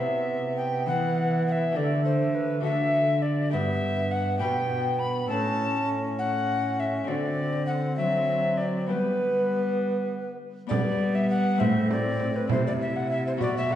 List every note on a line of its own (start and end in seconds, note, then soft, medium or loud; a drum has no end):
0.00 0.90 C3 medium
0.00 1.78 C3 soft
0.00 1.78 B3 medium
0.00 1.77 E4 soft
0.00 0.56 E5 medium
0.57 0.86 G5 medium
0.86 1.78 E3 medium
0.86 1.45 F#5 loud
1.47 1.53 F#5 medium
1.52 1.78 E5 medium
1.72 2.62 D3 soft
1.72 2.59 D4 soft
1.72 2.65 G4 soft
1.72 2.61 A4 soft
1.76 2.64 D3 medium
1.76 2.64 A3 medium
1.76 2.04 D5 medium
2.05 2.36 C5 medium
2.35 2.64 B4 medium
2.60 3.55 D3 soft
2.60 3.48 D4 soft
2.60 3.54 F#4 soft
2.60 3.55 A4 soft
2.60 3.24 E5 loud
2.65 3.55 D3 medium
2.65 3.24 A3 medium
3.22 3.51 D5 medium
3.49 5.33 G2 soft
3.49 4.37 D4 soft
3.49 4.38 G4 soft
3.49 4.39 B4 soft
3.49 4.13 E5 loud
3.54 4.43 G2 medium
3.54 4.38 B3 medium
4.11 4.38 F#5 medium
4.38 5.30 B2 medium
4.38 5.33 B2 medium
4.38 5.31 D4 soft
4.38 5.32 G4 soft
4.38 5.32 B4 soft
4.38 5.01 G5 loud
4.43 5.33 B3 medium
4.99 5.28 B5 medium
5.26 7.12 A2 soft
5.26 7.10 C#4 soft
5.26 7.10 E4 soft
5.26 8.91 A4 soft
5.26 5.89 A5 medium
5.31 7.06 A2 medium
5.31 6.20 C#4 medium
6.19 7.08 C#4 medium
6.19 6.81 F#5 loud
6.80 7.09 E5 medium
7.04 8.90 C4 soft
7.04 8.86 D4 soft
7.04 8.91 F#4 soft
7.04 7.66 D5 medium
7.08 8.92 D3 soft
7.08 7.95 D3 medium
7.08 8.86 C4 medium
7.67 7.96 F#5 medium
7.97 8.92 F#3 medium
7.97 8.59 E5 medium
8.57 8.88 D5 medium
8.86 10.69 G3 soft
8.86 10.51 G3 medium
8.86 10.65 B3 soft
8.86 10.38 B3 medium
8.86 10.66 D4 soft
8.86 10.68 G4 soft
8.86 10.37 B4 medium
10.67 11.63 G3 soft
10.67 11.61 B3 soft
10.67 11.61 D4 soft
10.67 11.62 G4 soft
10.67 11.17 D5 loud
10.71 11.63 G3 medium
10.71 11.62 B3 medium
10.71 frame drum medium
11.15 11.29 E5 medium
11.30 11.61 F#5 loud
11.57 12.53 A2 soft
11.57 12.51 A3 soft
11.57 12.46 C4 medium
11.57 12.50 C4 medium
11.57 12.47 E4 medium
11.57 11.90 E5 medium
11.57 frame drum medium
11.62 12.51 A2 medium
11.91 12.38 D5 loud
11.91 frame drum medium
12.20 frame drum medium
12.36 12.50 B4 medium
12.47 13.42 C3 soft
12.47 13.41 C4 soft
12.47 13.42 E4 soft
12.47 13.42 E4 medium
12.47 12.65 C5 loud
12.47 frame drum medium
12.51 13.42 C3 medium
12.67 12.73 D5 medium
12.81 12.98 E5 medium
12.96 13.10 F#5 medium
13.11 13.25 E5 medium
13.27 13.33 C5 medium
13.37 13.75 B2 medium
13.37 13.75 B3 soft
13.37 13.75 F#4 medium
13.37 13.55 D5 loud
13.37 frame drum soft
13.57 13.74 E5 medium
13.71 frame drum medium